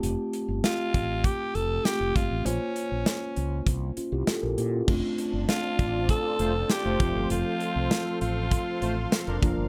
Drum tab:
CC |--------|--------|x-------|--------|
HH |xxxxxxxx|xxxxxxxx|-xxxxxxx|xxxxxxxx|
SD |--o---o-|--o---o-|--o---o-|--o---o-|
BD |---oo--o|----o---|o--oo--o|----o--o|